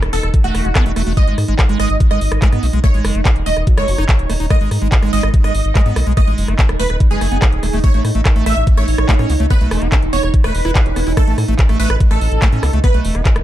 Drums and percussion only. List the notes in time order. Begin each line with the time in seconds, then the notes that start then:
0.02 cross-stick, closed hi-hat
0.13 open hi-hat
0.23 cross-stick, closed hi-hat
0.34 kick, closed hi-hat
0.44 closed hi-hat
0.55 cross-stick, open hi-hat
0.65 closed hi-hat
0.75 kick, cross-stick, clap, closed hi-hat
0.86 closed hi-hat
0.96 cross-stick, open hi-hat
1.07 open hi-hat
1.17 kick, closed hi-hat
1.27 closed hi-hat
1.38 cross-stick, open hi-hat
1.48 closed hi-hat
1.59 kick, cross-stick, clap, closed hi-hat
1.69 closed hi-hat
1.80 cross-stick, open hi-hat
1.90 closed hi-hat
2.00 kick, closed hi-hat
2.11 cross-stick, closed hi-hat
2.21 open hi-hat
2.32 cross-stick, closed hi-hat
2.42 kick, clap, closed hi-hat
2.52 cross-stick, closed hi-hat
2.63 open hi-hat
2.73 closed hi-hat
2.84 kick, cross-stick, closed hi-hat
2.94 closed hi-hat
3.05 cross-stick, open hi-hat
3.15 closed hi-hat
3.25 kick, cross-stick, clap, closed hi-hat
3.36 closed hi-hat
3.46 open hi-hat
3.57 cross-stick, closed hi-hat
3.67 kick, closed hi-hat
3.78 cross-stick, closed hi-hat
3.88 open hi-hat
3.98 cross-stick, closed hi-hat
4.09 kick, clap, closed hi-hat
4.19 closed hi-hat
4.30 cross-stick, open hi-hat
4.40 open hi-hat
4.50 kick, cross-stick, closed hi-hat
4.61 closed hi-hat
4.71 cross-stick, open hi-hat
4.82 closed hi-hat
4.92 kick, clap, closed hi-hat
5.03 cross-stick, closed hi-hat
5.13 open hi-hat
5.23 cross-stick, closed hi-hat
5.34 kick, closed hi-hat
5.44 cross-stick, closed hi-hat
5.55 open hi-hat
5.65 closed hi-hat
5.75 kick, cross-stick, clap, closed hi-hat
5.86 closed hi-hat
5.96 cross-stick, open hi-hat
6.07 closed hi-hat
6.17 kick, cross-stick, closed hi-hat
6.27 closed hi-hat
6.38 open hi-hat
6.48 cross-stick, closed hi-hat
6.59 kick, clap, closed hi-hat
6.69 cross-stick, closed hi-hat
6.80 open hi-hat
6.90 cross-stick
7.00 kick, closed hi-hat
7.11 closed hi-hat
7.21 cross-stick, open hi-hat
7.42 kick, cross-stick, clap, closed hi-hat
7.53 closed hi-hat
7.63 cross-stick, open hi-hat
7.73 open hi-hat
7.84 kick, closed hi-hat
7.94 closed hi-hat
8.05 cross-stick, open hi-hat
8.15 closed hi-hat
8.25 kick, cross-stick, clap, closed hi-hat
8.36 closed hi-hat
8.46 cross-stick, open hi-hat
8.57 closed hi-hat
8.67 kick, closed hi-hat
8.77 cross-stick, closed hi-hat
8.88 open hi-hat
8.98 cross-stick, closed hi-hat
9.09 kick, clap, closed hi-hat
9.19 cross-stick, closed hi-hat
9.30 open hi-hat
9.40 closed hi-hat
9.50 kick, cross-stick, closed hi-hat
9.61 closed hi-hat
9.71 cross-stick, open hi-hat
9.82 closed hi-hat
9.92 kick, cross-stick, clap, closed hi-hat
10.02 closed hi-hat
10.13 open hi-hat
10.23 cross-stick, closed hi-hat
10.34 kick, closed hi-hat
10.44 cross-stick, closed hi-hat
10.55 open hi-hat
10.65 cross-stick, closed hi-hat
10.75 kick, clap, closed hi-hat
10.86 closed hi-hat
10.96 cross-stick, open hi-hat
11.07 open hi-hat
11.17 kick, cross-stick, closed hi-hat
11.27 closed hi-hat
11.38 cross-stick, open hi-hat
11.48 closed hi-hat
11.59 kick, clap, closed hi-hat
11.69 cross-stick, closed hi-hat
11.80 open hi-hat
11.90 cross-stick, closed hi-hat
12.00 kick, closed hi-hat
12.11 cross-stick, closed hi-hat
12.21 open hi-hat
12.32 closed hi-hat
12.42 kick, cross-stick, clap, closed hi-hat
12.52 closed hi-hat
12.63 cross-stick, open hi-hat
12.73 closed hi-hat
12.84 kick, cross-stick, closed hi-hat
12.94 closed hi-hat
13.05 open hi-hat
13.15 cross-stick, closed hi-hat
13.25 kick, clap, closed hi-hat
13.36 cross-stick, closed hi-hat